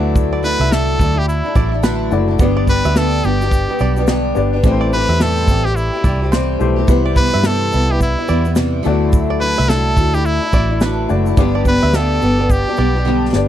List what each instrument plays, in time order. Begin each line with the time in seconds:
Already playing: fingered electric bass D2, steel-string acoustic guitar D3 F#3 A3 D4 E4, grand piano A3 E4 F#4 D5
0.16 kick, shaker
0.33 five-string banjo D5
0.43 steel-string acoustic guitar F#3 A3 D4 E4, trumpet B4, shaker
0.59 fingered electric bass C2, steel-string acoustic guitar A3 D4 E4, five-string banjo E5
0.70 steel-string acoustic guitar D3 F#3 A3 D4 E4, trumpet A4, snare, shaker
0.99 fingered electric bass D2, steel-string acoustic guitar F#3 A3 D4 E4, kick, shaker
1.14 steel-string acoustic guitar A3 D4 E4, trumpet G4
1.28 trumpet E4, shaker
1.43 steel-string acoustic guitar A3 D4 E4
1.55 fingered electric bass A1, steel-string acoustic guitar F#3 A3 D4 E4, five-string banjo D5, kick, shaker
1.72 steel-string acoustic guitar A3 D4 E4
1.83 steel-string acoustic guitar D3 F#3 A3 D4 E4, five-string banjo B4, snare, shaker
2.11 fingered electric bass F#1, grand piano A3 E4 F#4 D5, shaker
2.28 steel-string acoustic guitar A3 D4 E4
2.39 fingered electric bass G1, steel-string acoustic guitar G2 D3 G3 B3 D4 G4, grand piano B3 D4 G4 D5, kick, shaker
2.57 five-string banjo D5
2.67 steel-string acoustic guitar G3 B3 D4 G4, trumpet B4, kick, shaker
2.85 fingered electric bass D2, steel-string acoustic guitar G3 B3 D4 G4, five-string banjo E5, shaker
2.96 steel-string acoustic guitar G2 D3 G3 B3 D4 G4, trumpet A4, snare, shaker
3.23 fingered electric bass G1, steel-string acoustic guitar G3 B3 D4 G4, trumpet G4, shaker
3.41 steel-string acoustic guitar G3 B3 D4 G4, snare, shaker
3.51 kick, shaker
3.68 steel-string acoustic guitar G3 B3 D4 G4
3.79 fingered electric bass B1, steel-string acoustic guitar G3 B3 D4 G4, five-string banjo D5, shaker
3.96 steel-string acoustic guitar G3 B3 D4 G4, shaker
4.07 steel-string acoustic guitar G2 D3 G3 B3 D4 G4, snare, shaker
4.35 fingered electric bass G1, grand piano B3 D4 G4 D5, shaker
4.53 steel-string acoustic guitar G3 B3 D4 G4
4.63 fingered electric bass A1, steel-string acoustic guitar A2 E3 G3 C4 G4, grand piano A3 E4 G4 B4, kick, shaker
4.72 grand piano C5
4.81 five-string banjo D5
4.93 steel-string acoustic guitar E3 G3 C4 G4, trumpet B4, shaker
5.09 fingered electric bass E2, steel-string acoustic guitar G3 C4 G4, five-string banjo E5
5.20 steel-string acoustic guitar A2 E3 G3 C4 G4, trumpet A4, snare, shaker
5.48 fingered electric bass A1, steel-string acoustic guitar E3 G3 C4 G4, kick, shaker
5.65 steel-string acoustic guitar G3 C4 G4, trumpet G4, snare
5.76 trumpet E4, shaker
5.93 steel-string acoustic guitar G3 C4 G4
6.04 fingered electric bass C2, steel-string acoustic guitar E3 G3 C4 G4, five-string banjo D5, kick, shaker
6.22 steel-string acoustic guitar G3 C4 G4
6.32 steel-string acoustic guitar A2 E3 G3 C4 G4, five-string banjo C5, snare, shaker
6.59 fingered electric bass B1, grand piano A3 E4 G4 C5, shaker
6.76 steel-string acoustic guitar G3 C4 G4
6.87 fingered electric bass C2, steel-string acoustic guitar C3 E3 G3 B3 E4, grand piano E4 G4 B4 C5, kick, shaker
7.05 five-string banjo D5
7.15 steel-string acoustic guitar E3 G3 B3 E4, trumpet B4, kick, shaker
7.32 fingered electric bass G2, steel-string acoustic guitar G3 B3 E4, five-string banjo E5
7.44 steel-string acoustic guitar C3 E3 G3 B3 E4, trumpet A4, snare, shaker
7.72 fingered electric bass C2, steel-string acoustic guitar E3 G3 B3 E4, shaker
7.90 steel-string acoustic guitar G3 B3 E4, trumpet G4
8.00 trumpet E4, kick, shaker
8.18 steel-string acoustic guitar G3 B3 E4
8.28 fingered electric bass E2, steel-string acoustic guitar E3 G3 B3 E4, five-string banjo D5, shaker
8.45 steel-string acoustic guitar G3 B3 E4, shaker
8.55 steel-string acoustic guitar C3 E3 G3 B3 E4, snare, shaker
8.83 fingered electric bass D2, steel-string acoustic guitar D3 F#3 A3 D4 E4, grand piano A3 E4 F#4, shaker
8.87 grand piano D5
9.13 kick, shaker
9.30 five-string banjo D5
9.40 steel-string acoustic guitar F#3 A3 D4 E4, trumpet B4, shaker
9.56 fingered electric bass C2, steel-string acoustic guitar A3 D4 E4, five-string banjo E5
9.67 steel-string acoustic guitar D3 F#3 A3 D4 E4, trumpet A4, snare, shaker
9.95 fingered electric bass D2, steel-string acoustic guitar F#3 A3 D4 E4, kick, shaker
10.13 steel-string acoustic guitar A3 D4 E4, trumpet G4, shaker
10.25 trumpet E4, shaker
10.41 steel-string acoustic guitar A3 D4 E4
10.52 fingered electric bass A1, steel-string acoustic guitar F#3 A3 D4 E4, five-string banjo D5, kick, shaker
10.70 steel-string acoustic guitar A3 D4 E4
10.80 steel-string acoustic guitar D3 F#3 A3 D4 E4, five-string banjo B4, snare, shaker
11.08 fingered electric bass F#1, grand piano A3 E4 F#4 D5, shaker
11.26 steel-string acoustic guitar A3 D4 E4, shaker
11.37 fingered electric bass G1, steel-string acoustic guitar G2 D3 G3 B3 D4 G4, grand piano B3 D4 G4 D5, kick, shaker
11.55 five-string banjo D5
11.65 steel-string acoustic guitar G3 B3 D4 G4, trumpet B4, kick, shaker
11.82 fingered electric bass D2, steel-string acoustic guitar G3 B3 D4 G4, five-string banjo E5
11.94 steel-string acoustic guitar G2 D3 G3 B3 D4 G4, trumpet A4, snare, shaker
12.20 fingered electric bass G1, steel-string acoustic guitar G3 B3 D4 G4, shaker
12.38 steel-string acoustic guitar G3 B3 D4 G4
12.50 trumpet G4, kick, shaker
12.67 steel-string acoustic guitar G3 B3 D4 G4
12.77 fingered electric bass B1, steel-string acoustic guitar G3 B3 D4 G4, five-string banjo D5, shaker
12.95 steel-string acoustic guitar G3 B3 D4 G4
13.05 steel-string acoustic guitar G2 D3 G3 B3 D4 G4
13.33 fingered electric bass G1, grand piano B3 D4 G4 D5, snare